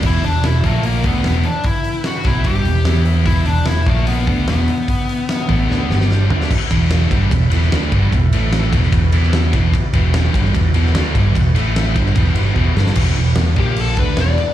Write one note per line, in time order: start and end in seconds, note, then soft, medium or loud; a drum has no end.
0.00 0.22 E1 medium
0.00 0.64 E4 medium
0.00 0.64 B4 medium
0.00 0.63 G5 medium
0.00 kick loud
0.00 open hi-hat medium
0.00 crash medium
0.05 0.24 E2 medium
0.05 0.23 B2 loud
0.05 0.24 E3 medium
0.05 0.25 E4 loud
0.23 0.42 E1 medium
0.23 0.41 E2 medium
0.23 0.40 B2 medium
0.23 0.44 D4 medium
0.23 open hi-hat medium
0.42 0.62 E1 medium
0.42 0.61 E2 medium
0.42 0.61 B2 medium
0.42 0.64 E4 medium
0.42 snare loud
0.42 open hi-hat medium
0.63 1.01 A#1 medium
0.63 1.04 A#2 medium
0.63 1.04 F3 medium
0.63 0.85 A3 medium
0.63 1.04 A#3 medium
0.63 1.03 F4 medium
0.63 1.03 A#4 medium
0.63 1.03 A#5 medium
0.63 kick medium
0.63 open hi-hat medium
0.83 1.05 A#3 medium
0.83 open hi-hat medium
1.03 1.22 D2 medium
1.03 1.24 D3 medium
1.03 1.24 A3 medium
1.03 1.47 B3 medium
1.03 1.25 D4 medium
1.03 3.85 E4 medium
1.03 3.85 B4 medium
1.03 3.85 G5 medium
1.03 kick medium
1.03 open hi-hat medium
1.23 1.43 E1 medium
1.23 1.44 E2 medium
1.23 1.44 B2 medium
1.23 1.44 E3 loud
1.23 snare medium
1.23 open hi-hat medium
1.43 1.66 D4 medium
1.43 open hi-hat medium
1.64 2.07 E4 loud
1.64 kick medium
1.64 open hi-hat medium
1.84 open hi-hat medium
2.04 2.24 F#4 loud
2.04 snare medium
2.04 open hi-hat medium
2.24 2.43 B1 medium
2.24 2.45 B2 medium
2.24 2.45 F#3 medium
2.24 2.46 B3 loud
2.24 2.47 E4 medium
2.24 kick loud
2.24 open hi-hat medium
2.44 2.64 G1 medium
2.44 2.64 G2 medium
2.44 2.65 D3 loud
2.44 2.66 G3 loud
2.44 3.03 G4 loud
2.44 kick loud
2.44 open hi-hat medium
2.64 2.83 E1 medium
2.64 2.82 E2 medium
2.64 2.82 B2 medium
2.64 open hi-hat medium
2.84 3.23 E2 loud
2.84 3.26 E3 medium
2.84 3.26 B3 loud
2.84 3.26 E4 medium
2.84 snare medium
2.84 open hi-hat medium
3.05 open hi-hat medium
3.25 3.45 E1 medium
3.25 3.45 E2 medium
3.25 3.45 B2 loud
3.25 3.47 E3 loud
3.25 3.45 E4 loud
3.25 kick medium
3.25 open hi-hat medium
3.46 3.65 E1 medium
3.46 3.63 E2 medium
3.46 3.63 B2 medium
3.46 3.65 D4 medium
3.46 open hi-hat medium
3.65 3.85 E1 medium
3.65 3.83 E2 medium
3.65 3.83 B2 medium
3.65 3.88 E4 loud
3.65 snare loud
3.65 open hi-hat medium
3.86 4.24 A#1 medium
3.86 4.26 A#2 medium
3.86 4.27 F3 medium
3.86 4.06 A3 medium
3.86 4.27 A#3 medium
3.86 4.28 F4 medium
3.86 4.28 A#4 medium
3.86 4.28 A#5 medium
3.86 kick loud
3.86 open hi-hat soft
4.07 4.45 B3 medium
4.07 open hi-hat medium
4.26 4.46 D2 medium
4.26 4.47 D3 medium
4.26 4.47 A3 loud
4.26 4.47 D4 medium
4.26 5.88 E4 medium
4.26 5.87 B4 medium
4.26 6.47 G5 medium
4.26 kick loud
4.26 open hi-hat medium
4.47 4.67 E1 medium
4.47 4.67 E2 medium
4.47 4.68 B2 loud
4.47 4.68 E3 loud
4.47 6.05 B3 medium
4.47 snare loud
4.47 open hi-hat medium
4.68 open hi-hat medium
4.88 kick medium
4.88 open hi-hat medium
5.09 open hi-hat medium
5.29 snare loud
5.29 open hi-hat medium
5.48 5.67 A1 medium
5.48 5.69 A2 medium
5.48 5.69 E3 loud
5.48 5.69 A3 loud
5.48 kick medium
5.48 open hi-hat soft
5.68 5.87 D2 medium
5.68 5.89 D3 loud
5.68 5.89 A3 medium
5.68 5.90 D4 loud
5.68 snare medium
5.89 6.27 G1 medium
5.89 6.29 G2 medium
5.89 6.30 D3 medium
5.89 6.30 G3 medium
5.89 6.31 D4 medium
5.89 6.30 G4 medium
5.89 snare medium
6.01 snare medium
6.11 snare medium
6.29 6.48 D2 medium
6.29 6.50 D3 medium
6.29 6.50 A3 loud
6.29 6.50 D4 loud
6.29 6.49 E4 medium
6.29 6.51 B4 medium
6.29 floor tom medium
6.41 snare medium
6.50 8.70 E4 medium
6.50 8.71 B4 medium
6.50 8.30 F#5 medium
6.50 kick loud
6.50 crash loud
6.70 7.08 E1 medium
6.70 7.10 E2 medium
6.70 7.11 B2 medium
6.70 7.11 E3 loud
6.70 kick loud
6.70 ride medium
6.90 snare loud
6.90 ride medium
7.10 7.29 G1 medium
7.10 7.31 G2 medium
7.10 7.31 D3 loud
7.10 7.31 G3 loud
7.10 kick loud
7.10 ride medium
7.31 7.49 E1 medium
7.31 7.47 E2 medium
7.31 7.48 B2 medium
7.31 kick loud
7.31 ride loud
7.50 7.69 E1 medium
7.50 7.71 E2 medium
7.50 7.72 B2 medium
7.50 7.72 E3 loud
7.50 ride medium
7.63 snare soft
7.71 7.90 D2 loud
7.71 7.91 D3 medium
7.71 7.91 A3 medium
7.71 7.92 D4 loud
7.71 snare loud
7.71 ride medium
7.92 8.11 G1 medium
7.92 8.11 G2 loud
7.92 8.11 D3 loud
7.92 8.12 G3 loud
7.92 kick loud
7.92 ride medium
8.12 8.31 E1 medium
8.12 8.29 E2 medium
8.12 8.29 B2 medium
8.12 kick medium
8.12 ride medium
8.31 8.69 A1 medium
8.31 8.72 A2 loud
8.31 8.72 E3 loud
8.31 8.72 A3 medium
8.31 8.73 A3 medium
8.31 ride medium
8.52 snare loud
8.52 ride medium
8.72 8.91 E1 medium
8.72 8.91 E2 loud
8.72 8.92 B2 loud
8.72 8.93 E3 loud
8.72 11.54 F#4 medium
8.72 kick loud
8.72 ride medium
8.76 11.55 E3 medium
8.76 11.54 B3 medium
8.83 snare soft
8.92 9.11 E1 medium
8.92 9.09 E2 medium
8.92 9.09 B2 medium
8.92 kick loud
8.92 ride loud
9.12 9.50 E2 loud
9.12 9.52 E3 medium
9.12 9.53 B3 loud
9.12 9.53 E4 medium
9.12 ride medium
9.23 snare soft
9.33 snare loud
9.33 ride medium
9.53 9.72 E1 medium
9.53 9.73 E2 loud
9.53 9.73 B2 loud
9.53 9.73 E3 loud
9.53 kick loud
9.53 ride medium
9.74 kick loud
9.74 ride loud
9.93 10.31 E1 medium
9.93 10.33 E2 medium
9.93 10.34 B2 loud
9.93 10.33 E3 loud
9.93 kick loud
9.93 ride medium
10.14 snare loud
10.14 ride loud
10.34 10.53 G1 medium
10.34 10.53 G2 loud
10.34 10.54 D3 loud
10.34 10.54 G3 loud
10.34 kick loud
10.34 ride medium
10.45 snare soft
10.54 10.73 E1 medium
10.54 10.71 E2 medium
10.54 10.71 B2 medium
10.54 kick loud
10.54 ride loud
10.74 10.93 E1 medium
10.74 10.94 E2 medium
10.74 10.94 B2 loud
10.74 10.94 E3 medium
10.74 ride medium
10.86 snare soft
10.95 11.14 D2 loud
10.95 11.14 D3 medium
10.95 11.15 A3 loud
10.95 11.15 D4 loud
10.95 snare loud
10.95 ride loud
11.15 11.34 G1 loud
11.15 11.34 G2 loud
11.15 11.35 D3 medium
11.15 11.35 G3 loud
11.15 kick loud
11.15 ride medium
11.35 11.54 E1 medium
11.35 11.51 E2 medium
11.35 11.52 B2 medium
11.35 kick medium
11.35 ride loud
11.55 11.93 A1 medium
11.55 11.95 A2 medium
11.55 11.95 E3 medium
11.55 11.95 A3 medium
11.55 11.96 A3 loud
11.55 11.96 E4 medium
11.55 11.96 B4 medium
11.55 ride medium
11.76 snare loud
11.76 ride loud
11.95 12.14 G1 medium
11.95 12.16 G2 medium
11.95 12.16 D3 medium
11.95 12.97 E3 medium
11.95 12.16 G3 loud
11.95 12.97 B3 medium
11.95 12.97 F#4 medium
11.95 kick loud
11.95 ride medium
12.06 snare soft
12.15 12.34 E1 medium
12.15 12.36 E2 medium
12.15 12.36 B2 loud
12.15 12.36 E3 loud
12.15 kick loud
12.15 ride loud
12.35 12.54 G1 medium
12.35 12.56 G2 loud
12.35 12.56 D3 loud
12.35 12.57 G3 medium
12.35 ride medium
12.56 12.74 E1 medium
12.56 12.76 E2 medium
12.56 12.76 B2 medium
12.56 12.77 E3 loud
12.56 kick medium
12.75 12.95 G1 medium
12.75 12.96 G2 medium
12.75 12.97 D3 medium
12.75 12.97 G3 loud
12.75 snare medium
12.86 snare medium
12.95 13.15 E1 medium
12.95 13.16 E2 medium
12.95 13.17 B2 medium
12.95 13.17 E3 loud
12.95 13.58 E3 medium
12.95 13.58 B3 medium
12.95 13.58 F#4 medium
12.95 kick loud
12.95 crash loud
12.95 crash medium
13.16 13.35 E1 medium
13.16 13.34 E2 medium
13.16 13.34 B2 medium
13.16 crash medium
13.35 13.55 E1 medium
13.35 13.54 E2 medium
13.35 13.54 B2 medium
13.35 snare loud
13.35 crash medium
13.56 13.94 A#1 loud
13.56 13.97 A#2 medium
13.56 13.97 F3 loud
13.56 13.97 A#3 medium
13.56 13.98 A#3 medium
13.56 13.98 F4 medium
13.56 13.78 G4 medium
13.56 13.98 C5 medium
13.56 kick loud
13.56 crash medium
13.76 crash medium
13.81 13.99 A4 medium
13.96 14.16 D2 medium
13.96 14.17 D3 medium
13.96 14.54 E3 medium
13.96 14.18 A3 medium
13.96 14.54 B3 medium
13.96 14.18 D4 loud
13.96 14.19 B4 medium
13.96 14.54 F#5 medium
13.96 kick loud
13.96 crash medium
14.17 14.36 E1 loud
14.17 14.38 E2 loud
14.17 14.38 B2 medium
14.17 14.38 E3 loud
14.17 14.54 D5 loud
14.17 snare loud
14.17 crash medium
14.38 crash medium